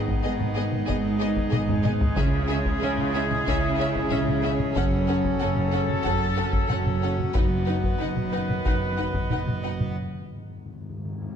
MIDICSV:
0, 0, Header, 1, 12, 480
1, 0, Start_track
1, 0, Tempo, 645856
1, 1618, Time_signature, 4, 2, 24, 8
1, 5459, Tempo, 652884
1, 6899, Tempo, 668896
1, 8373, End_track
2, 0, Start_track
2, 0, Title_t, "Violin section"
2, 0, Program_c, 0, 48
2, 173, Note_on_c, 0, 75, 73
2, 232, Note_off_c, 0, 75, 0
2, 412, Note_on_c, 0, 75, 73
2, 472, Note_off_c, 0, 75, 0
2, 652, Note_on_c, 0, 75, 84
2, 711, Note_off_c, 0, 75, 0
2, 899, Note_on_c, 0, 75, 85
2, 959, Note_off_c, 0, 75, 0
2, 1137, Note_on_c, 0, 75, 77
2, 1197, Note_off_c, 0, 75, 0
2, 1368, Note_on_c, 0, 75, 76
2, 1428, Note_off_c, 0, 75, 0
2, 1621, Note_on_c, 0, 76, 81
2, 1680, Note_off_c, 0, 76, 0
2, 1852, Note_on_c, 0, 76, 82
2, 1911, Note_off_c, 0, 76, 0
2, 2097, Note_on_c, 0, 76, 76
2, 2157, Note_off_c, 0, 76, 0
2, 2341, Note_on_c, 0, 76, 78
2, 2400, Note_off_c, 0, 76, 0
2, 2588, Note_on_c, 0, 76, 85
2, 2648, Note_off_c, 0, 76, 0
2, 2827, Note_on_c, 0, 76, 82
2, 2886, Note_off_c, 0, 76, 0
2, 3058, Note_on_c, 0, 76, 81
2, 3117, Note_off_c, 0, 76, 0
2, 3303, Note_on_c, 0, 76, 73
2, 3362, Note_off_c, 0, 76, 0
2, 3536, Note_on_c, 0, 78, 81
2, 3595, Note_off_c, 0, 78, 0
2, 3779, Note_on_c, 0, 78, 72
2, 3839, Note_off_c, 0, 78, 0
2, 4018, Note_on_c, 0, 78, 77
2, 4077, Note_off_c, 0, 78, 0
2, 4257, Note_on_c, 0, 78, 73
2, 4317, Note_off_c, 0, 78, 0
2, 4490, Note_on_c, 0, 78, 85
2, 4549, Note_off_c, 0, 78, 0
2, 4733, Note_on_c, 0, 78, 74
2, 4793, Note_off_c, 0, 78, 0
2, 4970, Note_on_c, 0, 78, 76
2, 5030, Note_off_c, 0, 78, 0
2, 5221, Note_on_c, 0, 78, 69
2, 5280, Note_off_c, 0, 78, 0
2, 5456, Note_on_c, 0, 78, 74
2, 5515, Note_off_c, 0, 78, 0
2, 5699, Note_on_c, 0, 78, 65
2, 5758, Note_off_c, 0, 78, 0
2, 5949, Note_on_c, 0, 78, 65
2, 6008, Note_off_c, 0, 78, 0
2, 6185, Note_on_c, 0, 78, 60
2, 6244, Note_off_c, 0, 78, 0
2, 6421, Note_on_c, 0, 78, 68
2, 6480, Note_off_c, 0, 78, 0
2, 6655, Note_on_c, 0, 78, 65
2, 6713, Note_off_c, 0, 78, 0
2, 6911, Note_on_c, 0, 78, 56
2, 6968, Note_off_c, 0, 78, 0
2, 7139, Note_on_c, 0, 78, 56
2, 7196, Note_off_c, 0, 78, 0
2, 8373, End_track
3, 0, Start_track
3, 0, Title_t, "Pipe organ"
3, 0, Program_c, 1, 19
3, 0, Note_on_c, 1, 63, 77
3, 0, Note_on_c, 1, 68, 82
3, 0, Note_on_c, 1, 71, 78
3, 0, Note_on_c, 1, 75, 88
3, 1619, Note_off_c, 1, 63, 0
3, 1621, Note_on_c, 1, 73, 97
3, 1622, Note_off_c, 1, 75, 0
3, 1624, Note_off_c, 1, 71, 0
3, 1625, Note_on_c, 1, 61, 94
3, 1625, Note_on_c, 1, 76, 91
3, 3539, Note_on_c, 1, 69, 96
3, 3540, Note_on_c, 1, 78, 96
3, 3543, Note_off_c, 1, 76, 0
3, 3544, Note_off_c, 1, 68, 0
3, 5454, Note_on_c, 1, 75, 81
3, 5456, Note_on_c, 1, 59, 82
3, 5456, Note_on_c, 1, 71, 82
3, 5462, Note_off_c, 1, 69, 0
3, 5463, Note_off_c, 1, 73, 0
3, 5466, Note_off_c, 1, 61, 0
3, 7373, Note_off_c, 1, 75, 0
3, 7374, Note_off_c, 1, 59, 0
3, 7374, Note_off_c, 1, 71, 0
3, 7377, Note_off_c, 1, 78, 0
3, 8373, End_track
4, 0, Start_track
4, 0, Title_t, "Trumpet section"
4, 0, Program_c, 2, 61
4, 0, Note_on_c, 2, 68, 106
4, 3512, Note_off_c, 2, 68, 0
4, 3540, Note_on_c, 2, 69, 116
4, 5338, Note_off_c, 2, 69, 0
4, 5465, Note_on_c, 2, 71, 100
4, 7349, Note_off_c, 2, 71, 0
4, 8373, End_track
5, 0, Start_track
5, 0, Title_t, "Violin section"
5, 0, Program_c, 3, 48
5, 173, Note_on_c, 3, 68, 76
5, 233, Note_off_c, 3, 68, 0
5, 414, Note_on_c, 3, 68, 77
5, 473, Note_off_c, 3, 68, 0
5, 647, Note_on_c, 3, 68, 80
5, 706, Note_off_c, 3, 68, 0
5, 882, Note_on_c, 3, 68, 79
5, 941, Note_off_c, 3, 68, 0
5, 1114, Note_on_c, 3, 68, 80
5, 1174, Note_off_c, 3, 68, 0
5, 1364, Note_on_c, 3, 68, 73
5, 1423, Note_off_c, 3, 68, 0
5, 1611, Note_on_c, 3, 68, 89
5, 1671, Note_off_c, 3, 68, 0
5, 1834, Note_on_c, 3, 68, 82
5, 1893, Note_off_c, 3, 68, 0
5, 2076, Note_on_c, 3, 68, 80
5, 2135, Note_off_c, 3, 68, 0
5, 2326, Note_on_c, 3, 68, 79
5, 2385, Note_off_c, 3, 68, 0
5, 2568, Note_on_c, 3, 68, 81
5, 2627, Note_off_c, 3, 68, 0
5, 2795, Note_on_c, 3, 68, 78
5, 2855, Note_off_c, 3, 68, 0
5, 3045, Note_on_c, 3, 68, 81
5, 3104, Note_off_c, 3, 68, 0
5, 3287, Note_on_c, 3, 68, 69
5, 3347, Note_off_c, 3, 68, 0
5, 3526, Note_on_c, 3, 69, 83
5, 3585, Note_off_c, 3, 69, 0
5, 3775, Note_on_c, 3, 69, 78
5, 3835, Note_off_c, 3, 69, 0
5, 4015, Note_on_c, 3, 69, 77
5, 4074, Note_off_c, 3, 69, 0
5, 4257, Note_on_c, 3, 69, 76
5, 4316, Note_off_c, 3, 69, 0
5, 4498, Note_on_c, 3, 69, 77
5, 4557, Note_off_c, 3, 69, 0
5, 4727, Note_on_c, 3, 69, 70
5, 4787, Note_off_c, 3, 69, 0
5, 4968, Note_on_c, 3, 69, 75
5, 5027, Note_off_c, 3, 69, 0
5, 5218, Note_on_c, 3, 69, 69
5, 5277, Note_off_c, 3, 69, 0
5, 5449, Note_on_c, 3, 71, 85
5, 5508, Note_off_c, 3, 71, 0
5, 5684, Note_on_c, 3, 71, 66
5, 5743, Note_off_c, 3, 71, 0
5, 5930, Note_on_c, 3, 71, 62
5, 5989, Note_off_c, 3, 71, 0
5, 6173, Note_on_c, 3, 71, 59
5, 6232, Note_off_c, 3, 71, 0
5, 6420, Note_on_c, 3, 71, 64
5, 6479, Note_off_c, 3, 71, 0
5, 6663, Note_on_c, 3, 71, 62
5, 6721, Note_off_c, 3, 71, 0
5, 6903, Note_on_c, 3, 71, 58
5, 6960, Note_off_c, 3, 71, 0
5, 7144, Note_on_c, 3, 71, 51
5, 7201, Note_off_c, 3, 71, 0
5, 8373, End_track
6, 0, Start_track
6, 0, Title_t, "French horn section"
6, 0, Program_c, 4, 60
6, 0, Note_on_c, 4, 59, 97
6, 0, Note_on_c, 4, 63, 106
6, 1586, Note_off_c, 4, 59, 0
6, 1588, Note_off_c, 4, 63, 0
6, 1612, Note_on_c, 4, 64, 120
6, 1617, Note_on_c, 4, 61, 113
6, 3507, Note_off_c, 4, 64, 0
6, 3537, Note_on_c, 4, 66, 110
6, 5336, Note_off_c, 4, 61, 0
6, 5463, Note_on_c, 4, 59, 98
6, 7347, Note_off_c, 4, 66, 0
6, 7348, Note_off_c, 4, 59, 0
6, 8373, End_track
7, 0, Start_track
7, 0, Title_t, "Viola section"
7, 0, Program_c, 5, 48
7, 184, Note_on_c, 5, 59, 77
7, 243, Note_off_c, 5, 59, 0
7, 430, Note_on_c, 5, 59, 73
7, 489, Note_off_c, 5, 59, 0
7, 665, Note_on_c, 5, 59, 81
7, 725, Note_off_c, 5, 59, 0
7, 902, Note_on_c, 5, 59, 80
7, 961, Note_off_c, 5, 59, 0
7, 1144, Note_on_c, 5, 59, 77
7, 1204, Note_off_c, 5, 59, 0
7, 1392, Note_on_c, 5, 59, 77
7, 1451, Note_off_c, 5, 59, 0
7, 1630, Note_on_c, 5, 61, 81
7, 1690, Note_off_c, 5, 61, 0
7, 1859, Note_on_c, 5, 61, 72
7, 1918, Note_off_c, 5, 61, 0
7, 2104, Note_on_c, 5, 61, 89
7, 2164, Note_off_c, 5, 61, 0
7, 2337, Note_on_c, 5, 61, 77
7, 2397, Note_off_c, 5, 61, 0
7, 2589, Note_on_c, 5, 61, 85
7, 2648, Note_off_c, 5, 61, 0
7, 2823, Note_on_c, 5, 61, 80
7, 2883, Note_off_c, 5, 61, 0
7, 3065, Note_on_c, 5, 61, 84
7, 3124, Note_off_c, 5, 61, 0
7, 3299, Note_on_c, 5, 61, 76
7, 3358, Note_off_c, 5, 61, 0
7, 3550, Note_on_c, 5, 61, 82
7, 3609, Note_off_c, 5, 61, 0
7, 3784, Note_on_c, 5, 61, 71
7, 3844, Note_off_c, 5, 61, 0
7, 4028, Note_on_c, 5, 61, 77
7, 4087, Note_off_c, 5, 61, 0
7, 4269, Note_on_c, 5, 61, 70
7, 4328, Note_off_c, 5, 61, 0
7, 4505, Note_on_c, 5, 61, 78
7, 4564, Note_off_c, 5, 61, 0
7, 4747, Note_on_c, 5, 61, 69
7, 4806, Note_off_c, 5, 61, 0
7, 4989, Note_on_c, 5, 61, 77
7, 5049, Note_off_c, 5, 61, 0
7, 5234, Note_on_c, 5, 61, 70
7, 5294, Note_off_c, 5, 61, 0
7, 5473, Note_on_c, 5, 63, 77
7, 5532, Note_off_c, 5, 63, 0
7, 5705, Note_on_c, 5, 63, 64
7, 5764, Note_off_c, 5, 63, 0
7, 5941, Note_on_c, 5, 63, 70
7, 6000, Note_off_c, 5, 63, 0
7, 6184, Note_on_c, 5, 63, 61
7, 6242, Note_off_c, 5, 63, 0
7, 6424, Note_on_c, 5, 63, 68
7, 6483, Note_off_c, 5, 63, 0
7, 6660, Note_on_c, 5, 63, 57
7, 6719, Note_off_c, 5, 63, 0
7, 6905, Note_on_c, 5, 63, 59
7, 6963, Note_off_c, 5, 63, 0
7, 7135, Note_on_c, 5, 63, 55
7, 7192, Note_off_c, 5, 63, 0
7, 8373, End_track
8, 0, Start_track
8, 0, Title_t, "Trombone section"
8, 0, Program_c, 6, 61
8, 0, Note_on_c, 6, 51, 92
8, 0, Note_on_c, 6, 56, 105
8, 1493, Note_off_c, 6, 51, 0
8, 1619, Note_on_c, 6, 49, 107
8, 3517, Note_off_c, 6, 56, 0
8, 3530, Note_on_c, 6, 54, 100
8, 5433, Note_off_c, 6, 49, 0
8, 5456, Note_on_c, 6, 51, 95
8, 7344, Note_off_c, 6, 54, 0
8, 7345, Note_off_c, 6, 51, 0
8, 8373, End_track
9, 0, Start_track
9, 0, Title_t, "Timpani"
9, 0, Program_c, 7, 47
9, 1609, Note_on_c, 7, 49, 106
9, 2305, Note_off_c, 7, 49, 0
9, 7384, Note_on_c, 7, 44, 37
9, 7427, Note_off_c, 7, 44, 0
9, 7436, Note_on_c, 7, 44, 40
9, 7478, Note_off_c, 7, 44, 0
9, 7486, Note_on_c, 7, 44, 37
9, 7536, Note_off_c, 7, 44, 0
9, 7544, Note_on_c, 7, 44, 40
9, 7587, Note_off_c, 7, 44, 0
9, 7595, Note_on_c, 7, 44, 41
9, 7641, Note_off_c, 7, 44, 0
9, 7650, Note_on_c, 7, 44, 42
9, 7696, Note_off_c, 7, 44, 0
9, 7704, Note_on_c, 7, 44, 43
9, 7754, Note_off_c, 7, 44, 0
9, 7762, Note_on_c, 7, 44, 42
9, 7804, Note_off_c, 7, 44, 0
9, 7813, Note_on_c, 7, 44, 48
9, 7858, Note_off_c, 7, 44, 0
9, 7867, Note_on_c, 7, 44, 50
9, 7917, Note_off_c, 7, 44, 0
9, 7926, Note_on_c, 7, 44, 53
9, 7973, Note_off_c, 7, 44, 0
9, 7982, Note_on_c, 7, 44, 51
9, 8032, Note_off_c, 7, 44, 0
9, 8040, Note_on_c, 7, 44, 53
9, 8088, Note_off_c, 7, 44, 0
9, 8096, Note_on_c, 7, 44, 52
9, 8143, Note_off_c, 7, 44, 0
9, 8152, Note_on_c, 7, 44, 60
9, 8200, Note_off_c, 7, 44, 0
9, 8209, Note_on_c, 7, 44, 62
9, 8261, Note_off_c, 7, 44, 0
9, 8271, Note_on_c, 7, 44, 67
9, 8315, Note_off_c, 7, 44, 0
9, 8324, Note_on_c, 7, 44, 64
9, 8373, Note_off_c, 7, 44, 0
9, 8373, End_track
10, 0, Start_track
10, 0, Title_t, "Cello section"
10, 0, Program_c, 8, 48
10, 0, Note_on_c, 8, 44, 103
10, 129, Note_off_c, 8, 44, 0
10, 188, Note_on_c, 8, 44, 97
10, 608, Note_off_c, 8, 44, 0
10, 667, Note_on_c, 8, 44, 104
10, 1086, Note_off_c, 8, 44, 0
10, 1138, Note_on_c, 8, 44, 98
10, 1561, Note_off_c, 8, 44, 0
10, 1621, Note_on_c, 8, 49, 108
10, 2043, Note_off_c, 8, 49, 0
10, 2095, Note_on_c, 8, 49, 111
10, 2521, Note_off_c, 8, 49, 0
10, 2577, Note_on_c, 8, 49, 105
10, 3003, Note_off_c, 8, 49, 0
10, 3054, Note_on_c, 8, 49, 103
10, 3480, Note_off_c, 8, 49, 0
10, 3533, Note_on_c, 8, 42, 102
10, 3959, Note_off_c, 8, 42, 0
10, 4011, Note_on_c, 8, 42, 100
10, 4437, Note_off_c, 8, 42, 0
10, 4490, Note_on_c, 8, 42, 99
10, 4918, Note_off_c, 8, 42, 0
10, 4976, Note_on_c, 8, 42, 95
10, 5404, Note_off_c, 8, 42, 0
10, 5459, Note_on_c, 8, 42, 97
10, 5883, Note_off_c, 8, 42, 0
10, 5940, Note_on_c, 8, 42, 81
10, 6364, Note_off_c, 8, 42, 0
10, 6415, Note_on_c, 8, 42, 85
10, 6841, Note_off_c, 8, 42, 0
10, 6900, Note_on_c, 8, 42, 74
10, 7320, Note_off_c, 8, 42, 0
10, 8373, End_track
11, 0, Start_track
11, 0, Title_t, "Double bass section"
11, 0, Program_c, 10, 48
11, 0, Note_on_c, 10, 32, 96
11, 123, Note_off_c, 10, 32, 0
11, 179, Note_on_c, 10, 32, 92
11, 603, Note_off_c, 10, 32, 0
11, 662, Note_on_c, 10, 32, 91
11, 1083, Note_off_c, 10, 32, 0
11, 1134, Note_on_c, 10, 32, 97
11, 1559, Note_off_c, 10, 32, 0
11, 1612, Note_on_c, 10, 37, 111
11, 2038, Note_off_c, 10, 37, 0
11, 2094, Note_on_c, 10, 37, 101
11, 2521, Note_off_c, 10, 37, 0
11, 2577, Note_on_c, 10, 37, 99
11, 3003, Note_off_c, 10, 37, 0
11, 3060, Note_on_c, 10, 37, 101
11, 3483, Note_off_c, 10, 37, 0
11, 3535, Note_on_c, 10, 30, 98
11, 3960, Note_off_c, 10, 30, 0
11, 4013, Note_on_c, 10, 30, 98
11, 4438, Note_off_c, 10, 30, 0
11, 4492, Note_on_c, 10, 30, 91
11, 4919, Note_off_c, 10, 30, 0
11, 4974, Note_on_c, 10, 30, 94
11, 5402, Note_off_c, 10, 30, 0
11, 5459, Note_on_c, 10, 30, 98
11, 5883, Note_off_c, 10, 30, 0
11, 5934, Note_on_c, 10, 30, 80
11, 6361, Note_off_c, 10, 30, 0
11, 6418, Note_on_c, 10, 30, 80
11, 6843, Note_off_c, 10, 30, 0
11, 6902, Note_on_c, 10, 30, 76
11, 7321, Note_off_c, 10, 30, 0
11, 8373, End_track
12, 0, Start_track
12, 0, Title_t, "Taiko and cinematic ensemble drums"
12, 58, Note_on_c, 9, 41, 77
12, 133, Note_off_c, 9, 41, 0
12, 300, Note_on_c, 9, 47, 56
12, 375, Note_off_c, 9, 47, 0
12, 537, Note_on_c, 9, 47, 56
12, 612, Note_off_c, 9, 47, 0
12, 664, Note_on_c, 9, 41, 89
12, 738, Note_off_c, 9, 41, 0
12, 1016, Note_on_c, 9, 41, 85
12, 1090, Note_off_c, 9, 41, 0
12, 1136, Note_on_c, 9, 47, 95
12, 1211, Note_off_c, 9, 47, 0
12, 1256, Note_on_c, 9, 45, 100
12, 1330, Note_off_c, 9, 45, 0
12, 1377, Note_on_c, 9, 47, 92
12, 1451, Note_off_c, 9, 47, 0
12, 1496, Note_on_c, 9, 43, 105
12, 1570, Note_off_c, 9, 43, 0
12, 1614, Note_on_c, 9, 41, 102
12, 1688, Note_off_c, 9, 41, 0
12, 1972, Note_on_c, 9, 41, 81
12, 2046, Note_off_c, 9, 41, 0
12, 2214, Note_on_c, 9, 47, 54
12, 2288, Note_off_c, 9, 47, 0
12, 2461, Note_on_c, 9, 47, 57
12, 2535, Note_off_c, 9, 47, 0
12, 2584, Note_on_c, 9, 41, 90
12, 2658, Note_off_c, 9, 41, 0
12, 2937, Note_on_c, 9, 41, 87
12, 3012, Note_off_c, 9, 41, 0
12, 3057, Note_on_c, 9, 47, 65
12, 3131, Note_off_c, 9, 47, 0
12, 3180, Note_on_c, 9, 47, 56
12, 3254, Note_off_c, 9, 47, 0
12, 3416, Note_on_c, 9, 47, 59
12, 3491, Note_off_c, 9, 47, 0
12, 3537, Note_on_c, 9, 41, 115
12, 3611, Note_off_c, 9, 41, 0
12, 3895, Note_on_c, 9, 41, 80
12, 3970, Note_off_c, 9, 41, 0
12, 4135, Note_on_c, 9, 47, 58
12, 4209, Note_off_c, 9, 47, 0
12, 4377, Note_on_c, 9, 47, 56
12, 4451, Note_off_c, 9, 47, 0
12, 4498, Note_on_c, 9, 41, 85
12, 4572, Note_off_c, 9, 41, 0
12, 4853, Note_on_c, 9, 41, 83
12, 4928, Note_off_c, 9, 41, 0
12, 4979, Note_on_c, 9, 47, 66
12, 5053, Note_off_c, 9, 47, 0
12, 5101, Note_on_c, 9, 47, 58
12, 5175, Note_off_c, 9, 47, 0
12, 5345, Note_on_c, 9, 47, 57
12, 5419, Note_off_c, 9, 47, 0
12, 5462, Note_on_c, 9, 41, 110
12, 5536, Note_off_c, 9, 41, 0
12, 5821, Note_on_c, 9, 41, 74
12, 5895, Note_off_c, 9, 41, 0
12, 6060, Note_on_c, 9, 47, 55
12, 6134, Note_off_c, 9, 47, 0
12, 6305, Note_on_c, 9, 47, 53
12, 6379, Note_off_c, 9, 47, 0
12, 6423, Note_on_c, 9, 41, 84
12, 6497, Note_off_c, 9, 41, 0
12, 6781, Note_on_c, 9, 41, 79
12, 6855, Note_off_c, 9, 41, 0
12, 6898, Note_on_c, 9, 47, 62
12, 6970, Note_off_c, 9, 47, 0
12, 7020, Note_on_c, 9, 47, 58
12, 7092, Note_off_c, 9, 47, 0
12, 7259, Note_on_c, 9, 47, 58
12, 7331, Note_off_c, 9, 47, 0
12, 8373, End_track
0, 0, End_of_file